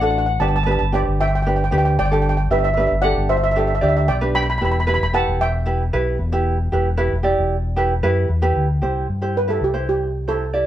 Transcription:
0.00 0.37 A1 loud
0.00 0.25 D4 medium
0.00 0.25 F#4 medium
0.00 0.25 A4 medium
0.00 0.10 F#5 medium
0.11 0.17 F#5 medium
0.18 0.25 F#5 medium
0.26 0.32 F#5 medium
0.40 0.76 G1 loud
0.40 0.56 D4 medium
0.40 0.56 G4 medium
0.40 0.56 B4 medium
0.40 0.48 D5 medium
0.40 0.47 A5 medium
0.48 0.55 A5 medium
0.56 0.62 A5 medium
0.63 0.82 D4 medium
0.63 0.83 B4 medium
0.63 0.70 A5 medium
0.68 0.83 G4 medium
0.68 0.78 A5 medium
0.79 1.04 G1 medium
0.79 0.85 A5 medium
0.92 1.24 D4 medium
0.92 1.24 G4 medium
0.92 1.24 B4 medium
0.92 1.06 D5 medium
0.92 1.06 G5 medium
1.07 1.68 G1 medium
1.21 1.27 E5 medium
1.21 1.27 G5 medium
1.28 1.34 G5 medium
1.35 1.41 G5 medium
1.42 1.62 G4 medium
1.42 1.48 G5 medium
1.47 1.62 D4 medium
1.47 1.62 B4 medium
1.47 1.55 G5 medium
1.56 1.63 G5 medium
1.64 1.70 G5 medium
1.71 1.96 D2 medium
1.71 1.96 D4 medium
1.71 1.96 G4 medium
1.71 1.96 B4 medium
1.71 1.77 G5 medium
1.78 1.84 G5 medium
1.85 1.93 G5 medium
1.98 2.47 G1 loud
1.98 2.06 D5 medium
1.98 2.04 G5 loud
2.05 2.12 G5 medium
2.11 2.35 D4 medium
2.11 2.35 G4 medium
2.11 2.35 A4 medium
2.11 2.21 G5 medium
2.22 2.28 G5 medium
2.29 2.36 G5 medium
2.37 2.44 G5 medium
2.51 2.87 G1 loud
2.51 2.67 D4 medium
2.51 2.67 G4 medium
2.51 2.67 B4 medium
2.51 2.59 B4 medium
2.51 2.57 E5 medium
2.58 2.63 E5 medium
2.64 2.72 E5 medium
2.74 2.93 D4 medium
2.74 2.93 B4 medium
2.74 2.79 E5 medium
2.78 2.93 G4 medium
2.78 2.86 E5 medium
2.87 3.14 G1 medium
2.87 2.95 E5 medium
3.02 3.35 D4 medium
3.02 3.35 G4 medium
3.02 3.35 A4 medium
3.02 3.27 D5 medium
3.02 3.27 F#5 loud
3.17 3.79 G1 medium
3.29 3.37 C5 medium
3.29 3.36 E5 medium
3.37 3.42 E5 medium
3.44 3.50 E5 medium
3.51 3.57 E5 medium
3.56 3.72 D4 medium
3.56 3.72 G4 medium
3.56 3.72 A4 medium
3.56 3.66 E5 medium
3.67 3.74 E5 medium
3.75 3.82 E5 medium
3.81 4.07 D2 medium
3.81 4.06 D4 medium
3.81 4.06 G4 medium
3.81 4.06 D5 medium
3.81 3.87 E5 medium
3.88 3.95 E5 medium
3.97 4.04 E5 medium
4.08 4.57 B1 loud
4.08 4.33 D5 medium
4.08 4.34 G5 loud
4.21 4.45 D4 medium
4.21 4.45 G4 medium
4.21 4.46 B4 loud
4.35 4.42 G5 medium
4.35 4.41 B5 loud
4.43 4.49 B5 medium
4.50 4.57 B5 medium
4.58 4.97 E1 loud
4.58 4.77 E4 medium
4.58 4.77 G4 medium
4.58 4.77 B4 medium
4.58 4.63 B5 medium
4.65 4.70 B5 medium
4.72 4.79 B5 medium
4.80 4.87 B5 medium
4.87 5.03 E4 medium
4.87 5.03 G4 medium
4.87 5.03 B4 medium
4.87 4.93 B5 medium
4.94 5.02 B5 medium
5.01 5.25 E1 medium
5.01 5.10 B5 medium
5.13 5.45 E4 medium
5.13 5.45 G4 medium
5.13 5.46 B4 medium
5.13 5.26 F#5 medium
5.13 5.26 A5 medium
5.27 5.89 E1 medium
5.41 8.26 E5 medium
5.41 8.26 G5 medium
5.66 5.82 E4 medium
5.66 5.82 G4 medium
5.66 5.82 B4 medium
5.93 6.17 B1 medium
5.93 6.17 E4 medium
5.93 6.17 G4 medium
5.93 6.17 B4 loud
6.19 6.68 E1 loud
6.32 6.56 E4 medium
6.32 6.56 G4 medium
6.32 6.56 B4 medium
6.72 7.08 E1 medium
6.72 6.88 E4 medium
6.72 6.88 G4 medium
6.72 6.88 B4 medium
6.97 7.14 E4 medium
6.97 7.14 G4 medium
6.97 7.14 B4 loud
7.11 7.35 E1 medium
7.23 7.56 E4 medium
7.23 7.56 G4 medium
7.23 7.56 D5 medium
7.38 8.00 E1 medium
7.76 7.93 E4 medium
7.76 7.93 G4 medium
7.76 7.93 B4 medium
8.03 8.27 F#2 medium
8.03 8.27 E4 medium
8.03 8.27 G4 medium
8.03 8.27 B4 loud
8.29 8.53 E2 loud
8.42 8.67 E4 medium
8.42 8.66 G4 medium
8.42 8.67 B4 loud
8.56 8.80 D2 medium
8.82 9.06 C2 medium
8.82 9.06 E4 medium
8.82 9.06 G4 medium
8.82 9.06 C5 medium
9.09 9.58 G2 medium
9.22 9.38 E4 medium
9.22 9.38 G4 medium
9.22 9.38 C5 medium
9.37 9.50 B4 medium
9.48 9.64 E4 medium
9.48 9.64 G4 medium
9.48 9.63 A4 medium
9.48 9.64 B4 medium
9.61 10.63 C2 medium
9.61 9.75 G4 medium
9.74 10.06 E4 medium
9.74 10.06 G4 medium
9.74 10.06 C5 medium
9.89 10.29 G4 medium
10.28 10.44 E4 medium
10.28 10.44 G4 medium
10.28 10.65 A4 medium
10.28 10.44 C5 medium
10.53 10.67 E4 medium
10.53 10.67 G4 soft
10.53 10.67 D5 medium

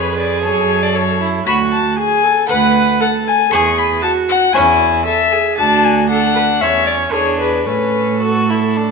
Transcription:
0.00 0.46 F2 medium
0.00 0.97 G#4 loud
0.00 0.41 B4 medium
0.00 0.18 C#5 loud
0.18 0.43 D5 medium
0.43 1.45 F#2 medium
0.43 1.42 A4 medium
0.43 0.84 C#5 loud
0.83 0.97 D5 loud
0.95 1.19 A4 medium
0.95 1.21 C#5 loud
1.20 1.45 E4 medium
1.46 1.88 D2 medium
1.46 1.98 F#4 medium
1.46 1.70 F#4 loud
1.46 1.55 B5 loud
1.72 1.97 A5 loud
1.97 2.24 G#4 loud
1.97 2.48 G#5 loud
2.23 2.48 A4 medium
2.48 2.92 D2 loud
2.48 2.73 B4 medium
2.48 3.02 B4 loud
2.48 3.00 F#5 loud
3.01 3.51 A4 loud
3.01 3.09 F#5 loud
3.27 3.53 G#5 loud
3.51 3.95 E2 loud
3.51 4.04 G#4 loud
3.51 3.76 G#4 loud
3.51 3.80 C#6 loud
3.79 4.02 B5 loud
4.02 4.53 F#4 loud
4.02 4.11 A5 loud
4.29 4.55 F#5 loud
4.53 4.97 E2 loud
4.53 4.79 C#4 medium
4.53 5.05 E4 medium
4.53 5.05 G#5 loud
5.05 5.33 A4 loud
5.05 5.57 E5 loud
5.32 5.59 G#4 medium
5.58 6.63 D2 loud
5.58 6.06 D4 medium
5.58 6.09 F#4 loud
5.58 5.86 A5 loud
5.84 6.09 G#5 loud
6.10 6.62 D4 medium
6.10 6.35 A4 loud
6.10 6.62 F#5 loud
6.36 6.44 B4 medium
6.61 7.13 E2 medium
6.61 7.14 C#4 medium
6.61 7.14 C#5 loud
6.61 6.86 E5 loud
6.87 6.95 D5 loud
7.12 7.68 E2 medium
7.12 7.68 D4 medium
7.12 7.66 G#4 medium
7.12 7.39 C#5 loud
7.40 7.66 B4 loud
7.66 8.91 A2 medium
7.66 8.21 C#4 medium
7.66 8.91 A4 medium
7.66 8.23 B4 loud
8.21 8.51 F#4 medium
8.21 8.91 A4 medium
8.50 8.78 E4 medium
8.77 8.91 D4 medium

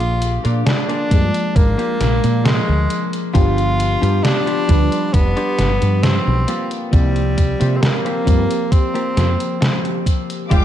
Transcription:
0.00 0.37 A#1 loud
0.00 1.05 F3 medium
0.00 1.06 A#3 medium
0.00 1.06 D4 medium
0.00 0.40 F4 loud
0.00 1.07 G#4 medium
0.00 closed hi-hat soft
0.21 muted clean electric guitar stroke soft
0.21 closed hi-hat medium
0.44 0.62 A#2 medium
0.44 0.66 A#3 medium
0.44 0.66 D4 medium
0.44 0.67 F4 medium
0.44 0.67 A#4 medium
0.44 closed hi-hat soft
0.66 1.58 D4 loud
0.66 snare loud
0.66 closed hi-hat medium
0.88 1.22 A#3 medium
0.88 1.22 D4 medium
0.88 1.23 F4 medium
0.88 1.23 G#4 loud
0.88 closed hi-hat soft
1.10 1.29 G2 medium
1.10 3.29 F3 loud
1.10 3.31 G#3 loud
1.10 3.30 A#3 medium
1.10 3.30 D4 medium
1.10 kick loud
1.10 closed hi-hat medium
1.34 closed hi-hat medium
1.55 1.74 G#1 medium
1.55 2.47 A#3 loud
1.55 muted clean electric guitar stroke soft
1.55 kick loud
1.55 closed hi-hat medium
1.78 2.12 A#3 loud
1.78 2.12 D4 medium
1.78 2.12 F4 loud
1.78 2.12 G4 loud
1.78 closed hi-hat soft
2.01 2.19 A#1 medium
2.01 snare medium
2.01 closed hi-hat medium
2.24 2.59 A#2 medium
2.24 closed hi-hat soft
2.44 3.13 G#3 loud
2.44 muted clean electric guitar stroke medium
2.44 snare loud
2.44 closed hi-hat medium
2.67 2.86 D2 medium
2.67 muted clean electric guitar stroke soft
2.90 closed hi-hat medium
3.13 closed hi-hat medium
3.33 3.95 G1 loud
3.33 4.63 F3 loud
3.33 3.57 B3 loud
3.33 4.64 B3 medium
3.33 3.57 D4 loud
3.33 4.64 D4 medium
3.33 4.25 F4 loud
3.33 3.58 F4 medium
3.33 3.58 G4 loud
3.33 4.65 G4 loud
3.33 kick loud
3.33 closed hi-hat medium
3.58 closed hi-hat soft
3.79 muted clean electric guitar stroke soft
3.79 closed hi-hat medium
4.01 4.20 G2 medium
4.01 4.24 B3 medium
4.01 4.24 D4 medium
4.01 4.24 F4 medium
4.01 4.24 G4 loud
4.01 closed hi-hat medium
4.24 5.15 D4 loud
4.24 snare loud
4.24 closed hi-hat medium
4.46 4.80 B3 medium
4.46 4.80 D4 medium
4.46 4.81 F4 medium
4.46 4.81 G4 medium
4.46 closed hi-hat soft
4.68 4.88 D2 medium
4.68 6.45 F3 loud
4.68 6.46 G3 medium
4.68 6.46 D4 medium
4.68 6.46 B4 loud
4.68 kick loud
4.68 closed hi-hat medium
4.92 closed hi-hat medium
5.13 5.32 F1 medium
5.13 6.04 B3 loud
5.13 muted clean electric guitar stroke soft
5.13 kick loud
5.13 closed hi-hat medium
5.36 5.70 B3 loud
5.36 5.70 D4 loud
5.36 5.70 F4 loud
5.36 5.70 G4 loud
5.36 closed hi-hat soft
5.59 5.77 G1 medium
5.59 snare medium
5.59 closed hi-hat medium
5.82 6.17 G2 medium
5.82 closed hi-hat medium
6.03 6.71 C4 loud
6.03 muted clean electric guitar stroke medium
6.03 snare loud
6.03 closed hi-hat medium
6.26 6.44 B1 medium
6.26 muted clean electric guitar stroke soft
6.48 7.20 A#3 medium
6.48 7.20 C4 medium
6.48 7.21 F4 medium
6.48 7.21 G4 medium
6.48 closed hi-hat medium
6.71 closed hi-hat medium
6.91 7.53 C2 loud
6.91 8.21 F3 medium
6.91 7.78 G3 loud
6.91 8.21 A#3 medium
6.91 8.22 C4 medium
6.91 8.23 G4 medium
6.91 kick loud
6.91 closed hi-hat medium
7.16 closed hi-hat soft
7.37 muted clean electric guitar stroke soft
7.37 kick medium
7.37 closed hi-hat medium
7.60 7.79 C3 medium
7.60 7.82 A#3 medium
7.60 7.82 C4 medium
7.60 7.83 F4 medium
7.60 7.83 G4 medium
7.60 closed hi-hat medium
7.77 7.83 C4 medium
7.82 8.73 A#3 loud
7.82 snare loud
7.82 closed hi-hat medium
8.05 8.39 A#3 medium
8.05 8.39 C4 medium
8.05 8.39 F4 medium
8.05 8.39 G4 medium
8.05 closed hi-hat soft
8.25 8.46 G2 medium
8.25 10.45 F3 medium
8.25 10.45 A#3 medium
8.25 10.46 C4 medium
8.25 10.46 G4 loud
8.25 kick loud
8.25 closed hi-hat medium
8.51 closed hi-hat medium
8.71 10.06 C4 medium
8.71 muted clean electric guitar stroke soft
8.71 kick loud
8.71 closed hi-hat medium
8.94 9.28 A#3 loud
8.94 9.28 C4 medium
8.94 9.28 F4 loud
8.94 9.29 G4 loud
8.94 closed hi-hat soft
9.17 9.35 F2 medium
9.17 snare medium
9.17 closed hi-hat medium
9.40 closed hi-hat medium
9.61 muted clean electric guitar stroke medium
9.61 snare loud
9.61 closed hi-hat medium
9.83 muted clean electric guitar stroke soft
9.83 closed hi-hat soft
10.06 kick medium
10.06 closed hi-hat medium
10.30 closed hi-hat medium
10.50 10.65 F1 loud
10.50 10.65 F3 loud
10.50 10.65 G#3 loud
10.50 10.65 G#3 medium
10.50 10.65 D4 medium
10.50 10.65 F4 loud
10.50 10.65 G4 loud
10.50 10.65 F5 medium
10.50 10.65 G5 medium
10.50 10.65 G5 loud
10.50 10.65 D6 medium
10.50 kick loud
10.50 closed hi-hat medium

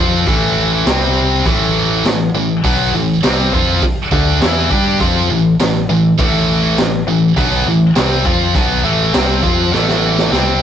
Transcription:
0.00 0.25 F2 medium
0.00 0.27 F3 medium
0.00 0.27 C4 medium
0.00 0.27 F4 medium
0.27 0.82 A1 medium
0.27 0.86 A2 medium
0.27 0.86 E3 medium
0.27 0.86 A3 medium
0.27 kick loud
0.27 open hi-hat soft
0.86 1.41 C2 medium
0.86 1.45 C3 medium
0.86 1.45 G3 medium
0.86 1.45 C4 loud
0.86 snare loud
0.86 open hi-hat medium
1.46 2.01 A1 medium
1.46 2.04 A2 medium
1.46 2.04 E3 medium
1.46 2.04 A3 medium
1.46 kick loud
1.46 open hi-hat soft
2.05 2.32 A1 medium
2.05 2.28 A2 medium
2.05 2.29 E3 medium
2.05 snare loud
2.05 open hi-hat medium
2.35 2.62 A1 medium
2.35 2.58 A2 medium
2.35 2.59 E3 medium
2.64 2.91 B1 medium
2.64 2.93 B2 medium
2.64 2.93 F#3 loud
2.64 2.93 B3 medium
2.64 kick medium
2.64 open hi-hat medium
2.94 3.21 A1 medium
2.94 3.17 A2 medium
2.94 3.17 E3 medium
3.23 3.50 C2 medium
3.23 3.52 C3 loud
3.23 3.52 G3 loud
3.23 3.52 C4 loud
3.23 snare loud
3.23 open hi-hat medium
3.52 3.80 F2 medium
3.52 3.81 F3 medium
3.52 3.82 C4 medium
3.52 3.82 F4 loud
3.52 kick loud
3.82 kick loud
3.82 open hi-hat medium
4.12 4.39 D2 medium
4.12 4.41 D3 medium
4.12 4.41 A3 medium
4.12 4.41 D4 loud
4.12 kick medium
4.41 4.69 E2 medium
4.41 4.70 E3 medium
4.41 4.70 B3 medium
4.41 4.70 E4 loud
4.41 snare loud
4.41 open hi-hat medium
4.71 4.98 G2 medium
4.71 4.99 G3 medium
4.71 4.99 D4 medium
4.71 5.00 G4 medium
4.71 kick medium
5.00 5.28 F2 medium
5.00 5.29 F3 medium
5.00 5.29 C4 medium
5.00 5.29 F4 medium
5.00 kick medium
5.00 open hi-hat medium
5.30 5.58 A1 medium
5.30 5.53 A2 medium
5.30 5.54 E3 medium
5.59 5.87 A1 medium
5.59 5.83 A2 medium
5.59 5.84 E3 medium
5.59 snare loud
5.59 open hi-hat medium
5.89 6.17 A1 medium
5.89 6.13 A2 medium
5.89 6.13 E3 medium
6.19 6.74 A1 medium
6.19 6.77 A2 loud
6.19 6.77 E3 medium
6.19 6.77 A3 loud
6.19 kick loud
6.19 open hi-hat medium
6.78 7.05 A1 medium
6.78 7.02 A2 medium
6.78 7.02 E3 medium
6.78 snare loud
6.78 open hi-hat medium
7.07 7.35 A1 medium
7.07 7.31 A2 medium
7.07 7.31 E3 medium
7.37 7.64 B1 medium
7.37 7.65 B2 medium
7.37 7.66 F#3 medium
7.37 7.66 B3 medium
7.37 kick medium
7.37 open hi-hat medium
7.66 7.94 A1 medium
7.66 7.90 A2 medium
7.66 7.90 E3 medium
7.95 8.24 C2 medium
7.95 8.25 C3 medium
7.95 8.25 G3 medium
7.95 8.25 C4 loud
7.95 snare loud
7.95 open hi-hat medium
8.25 8.53 F2 medium
8.25 8.54 F3 medium
8.25 8.54 C4 loud
8.25 8.55 F4 loud
8.25 kick loud
8.55 8.82 B1 medium
8.55 8.83 B2 medium
8.55 8.84 F#3 medium
8.55 8.84 B3 loud
8.55 kick loud
8.55 open hi-hat medium
8.84 9.12 A1 medium
8.84 9.13 A2 medium
8.84 9.13 E3 loud
8.84 9.13 A3 medium
9.13 9.41 C2 medium
9.13 9.42 C3 medium
9.13 9.43 G3 medium
9.13 9.42 C4 loud
9.13 snare loud
9.13 open hi-hat medium
9.43 9.71 F2 medium
9.43 9.72 F3 medium
9.43 9.72 C4 medium
9.43 9.72 F4 medium
9.43 kick loud
9.72 10.28 A1 medium
9.72 10.30 A2 medium
9.72 10.31 E3 medium
9.72 10.31 A3 medium
9.72 snare soft
9.88 snare medium
10.18 snare medium
10.31 10.62 C2 medium
10.31 10.62 C3 medium
10.31 10.62 G3 loud
10.31 10.62 C4 loud
10.31 snare medium

